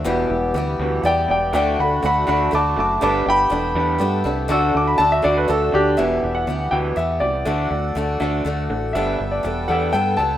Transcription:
<<
  \new Staff \with { instrumentName = "Grand piano" } { \time 3/4 \key e \minor \tempo 4 = 121 r2 <d'' fis'' g''>8 <d'' g''>8 | <d'' g''>8 <fis'' b''>8 <fis'' b''>8 <fis'' b''>8 <a'' d'''>8 <a'' d'''>8 | <a'' d'''>8 <g'' b''>2 r8 | e'''8 d'''16 b''16 a''16 e''16 d''16 b'16 a'8 <d' g'>8 |
e''8. fis''8. g''8 e''8 d''8~ | d''4. r4. | e''8. d''8. fis''8 g''8 a''8 | }
  \new Staff \with { instrumentName = "Reed electric piano" } { \time 3/4 \key e \minor <g' b' e''>4 <g' b' e''>8 r8 <g' b' e''>4 | <fis' a' d''>4 <fis' a' d''>8 r8 <fis' a' e''>4 | <g' a' b'>4 <g' a' b'>8 r8 <g' a' b'>4 | <fis' a' d''>4 <fis' a' d''>8 r8 <fis' a' d''>4 |
r2. | r2. | r2. | }
  \new Staff \with { instrumentName = "Accordion" } { \time 3/4 \key e \minor <b g'>2. | <d' fis'>2. | <b g'>2. | <d' fis'>2. |
<b g'>2. | <a' fis''>2. | <b' g''>2. | }
  \new Staff \with { instrumentName = "Accordion" } { \time 3/4 \key e \minor e2. | a2.~ | a2.~ | a2. |
e2. | d'2. | a'2. | }
  \new Staff \with { instrumentName = "Steel-string acoustic guitar" } { \time 3/4 \key e \minor <e, b, e g b g'>4 <e g b g'>4 <e g b g'>4 | <d a d' fis'>4 <d a d' fis'>8 <a d' fis'>8 <d a d' fis'>4 | <g b d' a'>4 <g b d' a'>4 <g b d' a'>8 <b d' a'>8 | <d d' fis' a'>4 <d d' fis' a'>8 <d' fis' a'>8 <d d' fis' a'>4 |
<e, b, e g b g'>4 <e g b g'>4 <e g b g'>4 | <d a d' fis'>4 <d a d' fis'>8 <a d' fis'>8 <d a d' fis'>4 | <g b d' a'>4 <g b d' a'>8 <b d' a'>8 <g b d' a'>8 <b d' a'>8 | }
  \new Staff \with { instrumentName = "Clean electric guitar" } { \clef bass \time 3/4 \key e \minor <e, b, e>8 <e, b,>8 <e, b,>8 <e, b, e>8 <e, b,>8 <e, b,>8 | <d a d'>8 <d a>8 <d a>8 <d a d'>8 <d a>8 <d a>8 | <g b d'>8 <g d'>8 <g d'>8 <g b d'>8 <g d'>8 <g d'>8 | <d d' fis'>8 <d d'>8 <d d'>8 <d d' fis'>8 <d d'>8 <d d'>8 |
<e, b, e>8 <e, b,>8 <e, b,>8 <e, b, e>8 <e, b,>8 <e, b,>8 | <d a d'>8 <d a>8 <d a>8 <d a d'>8 <d a>8 <d a>8 | <g b d'>8 <g b>8 <g b>8 <g b d'>8 <g b>8 <g b>8 | }
  \new Staff \with { instrumentName = "Fingered electric bass" } { \clef bass \time 3/4 \key e \minor e,,8 e,,8 d,8 d,8 e,8 e,,8 | d,8 d,8 d,8 d,8 d,8 fis,,8 | g,,8 g,,8 e,,8 e,8 g,8 c,8 | d,8 d,8 d,8 d,8 d,8 d,8 |
e,,8 e,,8 d,8 d,8 e,8 c,8 | d,8 d,8 d,8 d,8 d,8 a,,8 | g,,8 g,,8 e,,8 e,8 g,8 cis,8 | }
>>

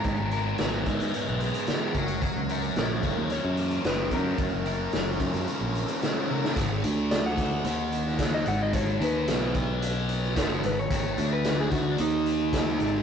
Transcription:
<<
  \new Staff \with { instrumentName = "Transistor combo organ" } { \time 4/4 \key gis \dorian \tempo 4 = 110 << { ais''1~ | ais''1~ | ais''1 | r1 |
r1 | r1 | } \\ { gis''2.~ gis''8 <cis'' eis''>8~ | <cis'' eis''>1~ | <cis'' eis''>1 | r1 |
r1 | r1 | } >> }
  \new Staff \with { instrumentName = "Electric slide guitar" } { \time 4/4 \key gis \dorian ais''2~ ais''8 r4. | r4 ais'4 cis''4 b'8 ais'8~ | ais'2. r4 | r4 d''16 fis''2 dis''16 fis''16 dis''16 |
cis''8 b'4 r2 b'16 cis''16~ | cis''8. b'8 gis'16 fis'8 dis'2 | }
  \new Staff \with { instrumentName = "Distorted electric guitar" } { \time 4/4 \key gis \dorian <gis, gis b ais'>8 ais'8 b8 dis'8 b8 gis8 b8 fis8 | fis8 ais'8 cis'8 eis'8 cis'8 ais8 cis'8 ais'8 | fis8 ais'8 cis'8 eis'8 cis'8 ais8 cis'8 ais'8 | <gis, dis gis>8 <d a d'>4. <dis ais dis'>4. <gis, dis gis>8~ |
<gis, dis gis>8 <dis ais dis'>8 <b, fis b>2 <fis, cis fis>8 <gis, dis>8 | <gis, dis gis>8 <d a d'>4. <dis ais dis'>4. <gis, dis gis>8 | }
  \new Staff \with { instrumentName = "Fingered electric bass" } { \clef bass \time 4/4 \key gis \dorian gis,16 gis,,8. gis,,8 gis,16 gis,16 r16 b,,8 r8. fis,,8~ | fis,,16 cis,8. ais,,8 fis,,16 dis,8 fis,8. fis,,8 fis,8 | fis,16 fis,,8. fis,,8 fis,16 fis,16 r16 ais,,8 r4 r16 | gis,,8 d,4. dis,4. gis,,8~ |
gis,,8 dis,8 b,,2 fis,,8 gis,,8 | gis,,8 d,4. dis,4. gis,,8 | }
  \new DrumStaff \with { instrumentName = "Drums" } \drummode { \time 4/4 <hh bd>8 hh8 <hh sn>8 <hh bd>16 hh16 hh8 hh16 hh16 <hh sn>8 <hh bd>16 hh16 | <hh bd>8 hh16 hh16 <hh sn>8 <hh bd>8 hh8 hh16 hh16 <hh sn>8 <hh bd>8 | <hh bd>8 hh8 <hh sn>8 <hh bd>16 hh16 hh8 hh16 hh16 <hh sn>8 tommh16 sn16 | <hh bd>8 hh8 <hh sn>8 <hh bd>8 hh8 hh16 sn16 <hh bd sn>8 hh8 |
<hh bd>8 hh8 <hh sn>8 <hh bd>8 hh8 hh16 sn16 <hh bd sn>8 hh8 | <hh bd>8 hh8 <hh sn>8 <hh bd>8 hh8 hh8 <hh bd sn>8 hh8 | }
>>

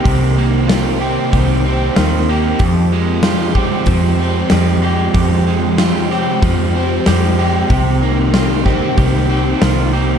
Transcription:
<<
  \new Staff \with { instrumentName = "Clean electric guitar" } { \time 4/4 \key f \minor \tempo 4 = 94 g'4 f'8 g'8 g'4 f'8 g'8 | g'4 f'8 g'8 r4 g'8 g'8 | g'4 f'8 g'8 r4 g'8 g'8 | g'4 f'8 g'8 g'4 f'8 g'8 | }
  \new Staff \with { instrumentName = "Overdriven electric guitar" } { \time 4/4 \key f \minor <c bes c' g'>8 ees8 bes8 g'8 c'8 g'8 bes8 g'8 | f,8 f8 aes8 g'8 c'8 g'8 aes8 g'8 | f,8 f8 aes8 g'8 c'8 g'8 aes8 g'8 | c8 ees8 bes8 g'8 c'8 g'8 bes8 g'8 | }
  \new Staff \with { instrumentName = "Overdriven electric guitar" } { \time 4/4 \key f \minor <c ees bes c'>8 bes8 g'8 c'8 ees8 c'8 ees8 bes8 | f,8 aes8 g'8 c'8 f8 c'8 f8 aes8 | f,8 aes8 g'8 c'8 f8 c'8 f8 aes8 | c8 bes8 g'8 c'8 ees8 c'8 ees8 bes8 | }
  \new Staff \with { instrumentName = "Picked electric bass" } { \clef bass \time 4/4 \key f \minor c,2 c,4 ees,4 | f,2 f,4 f,4 | f,2 f,4 f,4 | c,2 c,4 c,4 | }
  \new DrumStaff \with { instrumentName = "Drums" } \drummode { \time 4/4 <hho bd>4 <hho sn>4 <hho bd>4 <hho sn>4 | <hho bd>4 <hho sn>8 bd8 <hho bd>4 <hho sn>4 | <hho bd>4 <hho sn>8 sn8 <hho bd>4 <hho sn>4 | <hho bd>4 <hho sn>8 <bd sn>8 <hho bd>4 <hho sn>4 | }
>>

